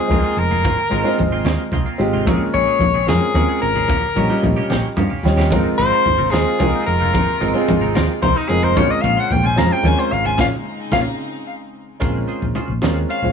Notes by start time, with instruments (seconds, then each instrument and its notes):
Already playing: soprano saxophone G#4
0.08 fingered electric bass C2, clean electric guitar D#3 A#3 C4, grand piano G#3 C4 D#4 F4 A#4, closed hi-hat, low conga
0.12 clean electric guitar F4
0.24 clean electric guitar A#3 C4 F4
0.37 fingered electric bass F1, soprano saxophone A#4, closed hi-hat, low conga
0.51 clean electric guitar A#3 C4 F4, high conga
0.64 fingered electric bass G#1, clean electric guitar D#3 A#3 C4 F4, kick, closed hi-hat, muted conga, low conga
0.78 low conga
0.90 fingered electric bass G#1, clean electric guitar D#3 A#3 C4 F4, grand piano G#3 C4 D#4 F4 A#4, kick, closed hi-hat
1.03 grand piano G#3 C4 D#4 F4 C5, clean electric guitar A#3 C4 F4
1.18 fingered electric bass G#1, closed hi-hat, low conga
1.31 clean electric guitar A#3 C4 F4, high conga
1.45 fingered electric bass D#2, clean electric guitar D#3 A#3 C4 F4, snare, closed hi-hat, muted conga
1.72 fingered electric bass C2, clean electric guitar D#3 A#3 C4 F4, closed hi-hat, low conga
1.86 clean electric guitar A#3 C4 F4
1.98 fingered electric bass G#1, grand piano G#3 C4 D#4 F4 G4, closed hi-hat, low conga
2.13 clean electric guitar A#3 C4 F4, high conga
2.25 fingered electric bass A#1, clean electric guitar F3 C4 C#4 G#4, grand piano G#3 A#3 C#4 F4 A#4, kick, closed hi-hat, muted conga, low conga
2.41 low conga
2.53 fingered electric bass A#1, clean electric guitar F3 C4 C#4 G#4, soprano saxophone C#5, kick, closed hi-hat
2.67 clean electric guitar C4 C#4 G#4
2.79 fingered electric bass A#1, closed hi-hat, low conga
2.94 clean electric guitar C4 C#4 G#4, high conga
3.06 fingered electric bass F2, clean electric guitar F3 C4 C#4 G#4, grand piano G#3 C4 C#4 F4 A#4, soprano saxophone G#4, snare, closed hi-hat, muted conga
3.34 fingered electric bass D#2, clean electric guitar F3 C4 C#4 G#4, grand piano G#3 C4 C#4 F4 A#4, closed hi-hat, low conga
3.49 clean electric guitar C4 C#4 G#4
3.62 fingered electric bass G#1, soprano saxophone A#4, closed hi-hat
3.76 clean electric guitar C4 C#4 G#4, high conga
3.88 fingered electric bass A#1, clean electric guitar F3 A#3 C#4 G4, kick, closed hi-hat, muted conga, low conga
4.15 fingered electric bass A#1, clean electric guitar F3 A#3 C#4 G4, grand piano G3 C#4 D#4 F4 A#4, kick, closed hi-hat
4.28 grand piano G3 C#4 D#4 F4 A#4, clean electric guitar A#3 C#4 G4
4.43 fingered electric bass A#1, closed hi-hat, low conga
4.56 clean electric guitar A#3 C#4 G4, high conga
4.70 fingered electric bass A#1, clean electric guitar F3 A#3 C#4 G4, snare, closed hi-hat, muted conga, low conga
4.96 fingered electric bass G2, clean electric guitar F3 A#3 C#4 G4, grand piano F5, closed hi-hat, low conga
5.10 clean electric guitar A#3 C#4 G4, high conga
5.23 fingered electric bass D#2, grand piano G3 C#4 D#4 F4 C#5 G5, snare, low conga
5.37 clean electric guitar A#3 C#4 G4, snare, low conga
5.50 fingered electric bass G#1, string section C3 A#3 F4, clean electric guitar F3 C4 D#4 A#4, grand piano G#3 C4 D#4 F4 A#4, kick, closed hi-hat, muted conga, low conga
5.65 low conga
5.78 fingered electric bass G#1, clean electric guitar F3 C4 D#4 A#4, soprano saxophone C5, kick, closed hi-hat
5.91 clean electric guitar C4 D#4 A#4
6.06 fingered electric bass G#1, closed hi-hat, low conga
6.18 clean electric guitar C4 D#4 A#4, high conga
6.31 fingered electric bass D#2, clean electric guitar F3 C4 D#4 A#4, grand piano G#3 C4 D#4 F4 C5, soprano saxophone G#4, snare, closed hi-hat, muted conga
6.59 fingered electric bass C2, clean electric guitar F3 C4 D#4 A#4, grand piano G#3 C4 D#4 F4 A#4, closed hi-hat, low conga
6.73 clean electric guitar C4 D#4 A#4
6.86 fingered electric bass F1, soprano saxophone A#4, closed hi-hat, low conga
7.00 clean electric guitar C4 D#4 A#4, high conga
7.13 fingered electric bass G#1, clean electric guitar F3 C4 D#4 A#4, kick, closed hi-hat, muted conga, low conga
7.29 low conga
7.40 fingered electric bass G#1, clean electric guitar F3 C4 D#4 A#4, grand piano G#3 C4 D#4 F4 A#4, kick, closed hi-hat
7.53 grand piano G#3 C4 D#4 F4 G#4, clean electric guitar C4 D#4 A#4
7.68 fingered electric bass G#1, closed hi-hat, low conga
7.81 clean electric guitar C4 D#4 A#4, high conga
7.95 fingered electric bass D#2, clean electric guitar F3 C4 D#4 A#4, snare, closed hi-hat, muted conga
8.22 fingered electric bass C2, clean electric guitar F3 C4 D#4 A#4, soprano saxophone C5, closed hi-hat, low conga
8.36 clean electric guitar C4 D#4 A#4, soprano saxophone D#4
8.48 fingered electric bass F1, grand piano G#3 C4 D#4 F4 A#4, soprano saxophone G#4, closed hi-hat, low conga
8.63 clean electric guitar C4 D#4 A#4, soprano saxophone C5, high conga
8.74 fingered electric bass A#1, string section C#3 G#3, grand piano G#3 C4 C#4 F4 A#4, clean electric guitar G#3 C#4 F4 C5, soprano saxophone C#5, kick, closed hi-hat, muted conga, low conga
8.90 soprano saxophone D#5, low conga
9.01 fingered electric bass A#1, clean electric guitar G#3 C#4 F4, soprano saxophone F5, kick, closed hi-hat
9.05 clean electric guitar C5
9.17 clean electric guitar C#4 F4 C5, soprano saxophone F#5
9.30 fingered electric bass A#1, soprano saxophone G5, closed hi-hat, low conga
9.43 clean electric guitar C#4 F4 C5, soprano saxophone G#5, high conga
9.56 fingered electric bass F2, grand piano G#3 C4 C#4 F4 C5, clean electric guitar G#3 C#4 F4 C5, soprano saxophone A#5, snare, closed hi-hat, muted conga
9.73 soprano saxophone G5
9.83 fingered electric bass D#2, grand piano G#3 C4 C#4 F4 A#4, clean electric guitar G#3 C#4 F4 C5, soprano saxophone G#5, closed hi-hat, low conga
9.97 clean electric guitar C#4 F4 C5, soprano saxophone C5
10.11 fingered electric bass G#1, soprano saxophone F5, closed hi-hat, low conga
10.24 clean electric guitar C#4 F4 C5, soprano saxophone G#5, high conga
10.36 fingered electric bass A#1, string section C#3 C4 D#4, clean electric guitar A#3 C#4 F4, grand piano A#3 C#4 F4, kick, snare, muted conga
10.40 soprano saxophone F5
10.92 fingered electric bass A#1, clean electric guitar A#3 C#4 F4, grand piano A#3 C#4 F4, soprano saxophone F5, kick, snare, muted conga
12.00 fingered electric bass A#1, grand piano G#3 C4 C#4 F4 A#4, clean electric guitar C#4 F4 G#4 C5, kick, closed hi-hat, muted conga, low conga
12.28 clean electric guitar F4 G#4 C5, closed hi-hat, low conga
12.42 fingered electric bass A#1, low conga
12.55 clean electric guitar C#4 F4 G#4 C5, muted fingered electric bass stroke, closed hi-hat, muted conga
12.68 fingered electric bass A#1, high conga
12.82 fingered electric bass D#2, grand piano G#3 C4 C#4 F4 A#4, clean electric guitar C#4 F4 G#4 C5, snare, closed hi-hat, low conga
13.09 clean electric guitar C#4 F4 G#4 C5, soprano saxophone F5, closed hi-hat
13.22 fingered electric bass A#1, grand piano G#3 C#4 F4 C5 C#5, low conga